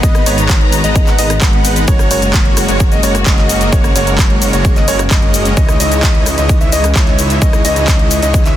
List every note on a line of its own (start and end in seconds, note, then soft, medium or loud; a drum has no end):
0.00 0.24 G#1 loud
0.00 1.84 D#3 medium
0.00 8.57 G#3 medium
0.00 0.24 G#3 medium
0.00 1.84 B3 medium
0.00 0.24 B3 medium
0.00 0.24 D#4 medium
0.00 0.24 B4 medium
0.00 0.24 D#5 loud
0.00 1.86 A#5 loud
0.00 kick loud
0.00 closed hi-hat medium
0.00 shaker soft
0.15 cross-stick medium
0.15 closed hi-hat soft
0.15 shaker soft
0.26 0.82 G#1 medium
0.26 0.81 G#3 medium
0.26 0.81 B3 medium
0.26 0.81 D#4 medium
0.26 0.81 B4 medium
0.26 0.81 C#5 loud
0.26 open hi-hat loud
0.26 shaker medium
0.38 closed hi-hat medium
0.38 shaker soft
0.49 kick loud
0.49 clap loud
0.49 closed hi-hat medium
0.49 shaker soft
0.61 closed hi-hat soft
0.72 open hi-hat loud
0.72 shaker medium
0.84 1.05 G#1 medium
0.84 1.04 G#3 medium
0.84 1.04 B3 medium
0.84 1.04 D#4 medium
0.84 1.04 B4 medium
0.84 1.04 D#5 medium
0.84 closed hi-hat medium
0.84 shaker soft
0.96 kick loud
0.96 closed hi-hat medium
0.96 shaker soft
1.07 1.16 G#1 loud
1.07 1.16 G#3 medium
1.07 1.16 B3 medium
1.07 1.16 D#4 medium
1.07 1.16 B4 medium
1.07 1.16 F#5 medium
1.07 clap soft
1.07 closed hi-hat soft
1.07 shaker soft
1.19 1.39 G#1 medium
1.19 1.31 G#3 loud
1.19 1.31 B3 medium
1.19 1.31 D#4 medium
1.19 1.31 B4 medium
1.19 1.31 D#5 loud
1.19 open hi-hat loud
1.19 shaker medium
1.30 cross-stick medium
1.30 closed hi-hat medium
1.30 shaker soft
1.41 1.86 G#1 loud
1.41 1.85 G#3 medium
1.41 1.85 B3 medium
1.41 1.85 D#4 medium
1.41 1.85 B4 medium
1.41 1.85 F#5 medium
1.41 kick loud
1.41 clap loud
1.41 closed hi-hat medium
1.41 shaker soft
1.53 closed hi-hat soft
1.65 open hi-hat loud
1.65 shaker medium
1.76 closed hi-hat medium
1.76 shaker soft
1.88 2.09 F#1 loud
1.88 8.57 C#3 medium
1.88 2.08 G#3 medium
1.88 5.53 A#3 medium
1.88 2.08 C#4 medium
1.88 5.53 F#4 loud
1.88 2.08 F#4 medium
1.88 2.08 A#4 medium
1.88 2.08 C#5 loud
1.88 kick loud
1.88 closed hi-hat medium
1.88 shaker soft
1.99 cross-stick medium
1.99 closed hi-hat soft
1.99 shaker soft
2.11 2.66 F#1 medium
2.11 2.66 G#3 medium
2.11 2.66 C#4 medium
2.11 2.66 F#4 medium
2.11 2.66 A#4 medium
2.11 2.66 C#5 loud
2.11 open hi-hat loud
2.11 shaker medium
2.22 closed hi-hat medium
2.22 shaker soft
2.34 kick loud
2.34 clap loud
2.34 closed hi-hat medium
2.34 shaker soft
2.45 closed hi-hat soft
2.57 cross-stick medium
2.57 open hi-hat loud
2.57 shaker medium
2.69 2.89 F#1 loud
2.69 2.89 G#3 medium
2.69 2.89 C#4 medium
2.69 2.89 F#4 medium
2.69 2.89 A#4 medium
2.69 2.89 C#5 medium
2.69 closed hi-hat medium
2.69 shaker soft
2.80 kick loud
2.80 closed hi-hat medium
2.80 shaker soft
2.92 3.01 F#1 loud
2.92 3.00 G#3 medium
2.92 3.00 C#4 medium
2.92 3.00 F#4 medium
2.92 3.00 A#4 medium
2.92 3.00 D#5 medium
2.92 closed hi-hat soft
2.92 shaker soft
3.03 3.24 F#1 medium
3.03 3.15 G#3 loud
3.03 3.15 C#4 medium
3.03 3.15 F#4 medium
3.03 3.15 A#4 medium
3.03 3.15 C#5 loud
3.03 open hi-hat loud
3.03 shaker medium
3.15 cross-stick medium
3.15 closed hi-hat medium
3.15 shaker soft
3.26 3.70 F#1 loud
3.26 3.70 G#3 medium
3.26 3.70 C#4 medium
3.26 3.70 F#4 medium
3.26 3.70 A#4 medium
3.26 3.70 D#5 medium
3.26 3.70 D#5 loud
3.26 kick loud
3.26 clap loud
3.26 closed hi-hat medium
3.26 shaker soft
3.38 clap soft
3.38 closed hi-hat soft
3.49 open hi-hat loud
3.49 shaker medium
3.61 closed hi-hat medium
3.61 shaker soft
3.72 3.93 F#1 loud
3.72 3.93 G#3 medium
3.72 3.93 C#4 medium
3.72 3.93 F#4 medium
3.72 3.93 A#4 medium
3.72 3.93 C#5 loud
3.72 kick loud
3.72 closed hi-hat medium
3.72 shaker soft
3.84 cross-stick medium
3.84 closed hi-hat soft
3.84 shaker soft
3.96 4.51 F#1 medium
3.96 4.50 G#3 medium
3.96 4.50 C#4 medium
3.96 4.50 F#4 medium
3.96 4.50 A#4 medium
3.96 4.50 C#5 loud
3.96 open hi-hat loud
3.96 shaker medium
4.07 closed hi-hat medium
4.07 shaker soft
4.18 kick loud
4.18 clap loud
4.18 closed hi-hat medium
4.18 shaker soft
4.30 closed hi-hat soft
4.42 open hi-hat loud
4.42 shaker medium
4.53 4.74 F#1 loud
4.53 4.74 G#3 medium
4.53 4.74 C#4 medium
4.53 4.74 F#4 medium
4.53 4.74 A#4 medium
4.53 4.74 C#5 medium
4.53 closed hi-hat medium
4.53 shaker soft
4.65 kick loud
4.65 closed hi-hat medium
4.65 shaker soft
4.76 4.86 F#1 loud
4.76 4.85 G#3 medium
4.76 4.85 C#4 medium
4.76 4.85 F#4 medium
4.76 4.85 A#4 medium
4.76 4.85 D#5 medium
4.76 clap soft
4.76 closed hi-hat soft
4.76 shaker soft
4.88 5.09 F#1 loud
4.88 5.00 G#3 medium
4.88 5.00 C#4 medium
4.88 5.00 F#4 medium
4.88 5.00 A#4 medium
4.88 5.00 C#5 loud
4.88 open hi-hat loud
4.88 shaker medium
4.99 cross-stick medium
4.99 closed hi-hat medium
4.99 shaker soft
5.11 5.55 F#1 medium
5.11 5.54 G#3 medium
5.11 5.54 C#4 medium
5.11 5.54 F#4 medium
5.11 5.54 A#4 medium
5.11 5.54 D#5 medium
5.11 kick loud
5.11 clap loud
5.11 closed hi-hat soft
5.11 shaker soft
5.22 closed hi-hat soft
5.34 open hi-hat medium
5.34 shaker medium
5.45 closed hi-hat medium
5.45 shaker soft
5.57 5.78 C#2 loud
5.57 8.57 E3 medium
5.57 5.77 G#3 medium
5.57 5.77 D#4 medium
5.57 5.77 E4 medium
5.57 5.77 C#5 medium
5.57 5.77 D#5 loud
5.57 kick loud
5.57 closed hi-hat medium
5.57 shaker soft
5.69 cross-stick medium
5.69 closed hi-hat soft
5.69 shaker soft
5.80 6.36 C#2 medium
5.80 6.35 G#3 loud
5.80 6.35 D#4 medium
5.80 6.35 E4 medium
5.80 6.35 C#5 medium
5.80 6.35 D#5 loud
5.80 open hi-hat loud
5.80 shaker medium
5.92 closed hi-hat medium
5.92 shaker soft
6.03 kick loud
6.03 clap loud
6.03 closed hi-hat medium
6.03 shaker soft
6.15 closed hi-hat soft
6.26 cross-stick medium
6.26 open hi-hat loud
6.26 shaker medium
6.38 6.59 C#2 loud
6.38 6.58 G#3 medium
6.38 6.58 D#4 medium
6.38 6.58 E4 medium
6.38 6.58 C#5 medium
6.38 6.58 D#5 medium
6.38 closed hi-hat medium
6.38 shaker soft
6.49 kick loud
6.49 closed hi-hat medium
6.49 shaker soft
6.61 6.70 C#2 loud
6.61 6.70 G#3 medium
6.61 6.70 D#4 medium
6.61 6.70 E4 medium
6.61 6.70 C#5 medium
6.61 6.70 E5 medium
6.61 closed hi-hat soft
6.61 shaker soft
6.72 6.93 C#2 loud
6.72 6.84 G#3 loud
6.72 6.85 D#4 medium
6.72 6.84 E4 medium
6.72 6.85 C#5 medium
6.72 6.84 D#5 loud
6.72 6.85 D#5 loud
6.72 open hi-hat loud
6.72 shaker medium
6.84 cross-stick medium
6.84 closed hi-hat medium
6.84 shaker soft
6.95 7.39 C#2 medium
6.95 7.39 G#3 medium
6.95 7.39 D#4 medium
6.95 7.39 E4 medium
6.95 7.39 C#5 medium
6.95 7.39 E5 medium
6.95 kick loud
6.95 clap loud
6.95 closed hi-hat soft
6.95 shaker soft
7.07 clap soft
7.07 closed hi-hat soft
7.19 open hi-hat medium
7.19 shaker medium
7.30 closed hi-hat medium
7.30 shaker soft
7.42 7.62 C#2 loud
7.42 7.62 G#3 medium
7.42 7.62 D#4 medium
7.42 7.62 E4 medium
7.42 7.62 C#5 medium
7.42 7.62 D#5 loud
7.42 kick loud
7.42 closed hi-hat medium
7.42 shaker soft
7.53 cross-stick medium
7.53 closed hi-hat soft
7.53 shaker soft
7.65 8.20 C#2 medium
7.65 8.20 G#3 medium
7.65 8.20 D#4 medium
7.65 8.20 E4 medium
7.65 8.20 C#5 medium
7.65 8.20 D#5 loud
7.65 open hi-hat loud
7.65 shaker medium
7.76 closed hi-hat medium
7.76 shaker soft
7.88 kick loud
7.88 clap loud
7.88 closed hi-hat medium
7.88 shaker soft
7.99 closed hi-hat soft
8.11 open hi-hat loud
8.11 shaker medium
8.22 8.43 C#2 loud
8.22 8.43 G#3 medium
8.22 8.43 D#4 medium
8.22 8.43 E4 medium
8.22 8.43 C#5 medium
8.22 8.43 D#5 medium
8.22 closed hi-hat medium
8.22 shaker soft
8.34 kick loud
8.34 closed hi-hat medium
8.34 shaker soft
8.45 8.55 C#2 loud
8.45 8.54 G#3 medium
8.45 8.54 D#4 medium
8.45 8.54 E4 medium
8.45 8.54 C#5 medium
8.45 8.54 E5 medium
8.45 clap soft
8.45 closed hi-hat soft
8.45 shaker soft